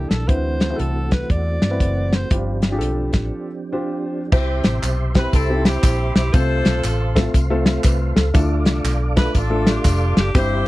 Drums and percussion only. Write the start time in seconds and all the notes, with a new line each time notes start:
0.11 snare, closed hi-hat
0.29 kick, closed hi-hat
0.60 snare, closed hi-hat
0.79 closed hi-hat
1.11 kick, snare, closed hi-hat
1.30 kick, closed hi-hat
1.62 snare, closed hi-hat
1.80 kick, closed hi-hat
2.13 snare, closed hi-hat
2.31 kick, closed hi-hat
2.62 snare, closed hi-hat
2.81 closed hi-hat
3.13 kick, snare, closed hi-hat
4.32 kick, crash, tambourine
4.64 snare, closed hi-hat, tambourine
4.83 clap, closed hi-hat, tambourine
5.15 kick, snare, closed hi-hat, tambourine
5.33 kick, closed hi-hat, tambourine
5.65 snare, closed hi-hat, tambourine
5.83 kick, clap, closed hi-hat, tambourine
6.16 snare, closed hi-hat, tambourine
6.34 kick, closed hi-hat, tambourine
6.65 snare, closed hi-hat, tambourine
6.84 clap, closed hi-hat, tambourine
7.16 kick, snare, closed hi-hat, tambourine
7.34 kick, closed hi-hat, tambourine
7.66 snare, closed hi-hat, tambourine
7.84 kick, clap, closed hi-hat, tambourine
8.17 snare, closed hi-hat, tambourine
8.34 kick, closed hi-hat, tambourine
8.65 snare, closed hi-hat, tambourine
8.85 clap, closed hi-hat, tambourine
9.17 kick, snare, closed hi-hat, tambourine
9.35 kick, closed hi-hat, tambourine
9.67 snare, closed hi-hat, tambourine
9.85 kick, clap, closed hi-hat, tambourine
10.17 snare, closed hi-hat, tambourine
10.35 kick, closed hi-hat, tambourine